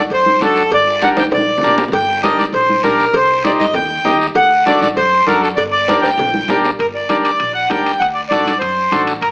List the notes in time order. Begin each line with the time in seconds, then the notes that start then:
0.10 F#2 C5, cowbell, high conga, long guiro
0.26 high conga
0.40 F#2 D4 F#4 A4, high conga, low timbale, short guiro
0.56 short guiro
0.71 G1 D5, cowbell, high conga, long guiro
1.02 D4 G4 A#4 F#5, high conga, short guiro
1.17 D2 G5, high conga, high timbale, short guiro
1.31 A#1 D5, cowbell, high timbale, long guiro
1.37 high conga
1.58 low conga
1.63 A#1 D4 G4 A#4, short guiro
1.68 low conga
1.78 low timbale, short guiro
1.88 G1, low conga
1.93 G5, cowbell, high conga, long guiro
2.23 D4 G4 A#4 D#5, high conga, short guiro
2.38 D2 D5, high conga, short guiro
2.52 A#1 C5, cowbell, high conga, long guiro
2.69 high conga
2.83 A#1 D4 G4 A#4, high conga, short guiro
3.00 short guiro
3.13 C2 C5, cowbell, high conga, long guiro
3.44 D#4 G4 C5 D5, high conga, short guiro
3.59 G2 D#5, high conga, short guiro
3.74 D#2 G5, cowbell, high conga, low conga, long guiro
4.04 D#2 D#4 G4 D#5, high conga, low conga, low timbale, short guiro
4.21 short guiro
4.35 D2 F#5, cowbell, high conga, long guiro
4.66 D4 F#4 A4 D5, high conga, short guiro
4.81 A1 D5, high conga, short guiro
4.97 F#2 C5, cowbell, high conga, long guiro
5.27 F#2 D4 F#4 A4 A#4, high conga, short guiro
5.42 A4, short guiro
5.56 G1 D5, cowbell, high conga, long guiro
5.72 D5
5.88 D4 G4 A#4, high conga, high timbale, short guiro
6.01 D2 G5, high timbale, short guiro
6.17 A#1, cowbell, high conga, low conga, long guiro
6.34 high conga
6.48 A#1 D4 G4 A#4, high conga, low conga, low timbale, short guiro
6.64 low timbale, short guiro
6.79 G1 A#4, high timbale, long guiro
6.95 D5
7.09 D2 D4 G4 A#4 D5, high conga, high timbale, short guiro
7.23 D5, high timbale, short guiro
7.40 A#1, high timbale, long guiro
7.54 F#5
7.69 D2 D4 G4 A#4 G5, high conga, high timbale, low timbale, short guiro
7.86 high timbale, short guiro
7.99 D2 F#5, high timbale, long guiro
8.14 D5
8.29 A1 D4 F#4 A4 D5, high conga, high timbale, short guiro
8.46 high conga, high timbale, short guiro
8.59 F#2 C5, high timbale, long guiro
8.92 A1 D4 F#4 A4, high conga, high timbale, short guiro
9.07 high timbale, short guiro
9.21 G1 A#4, high timbale, long guiro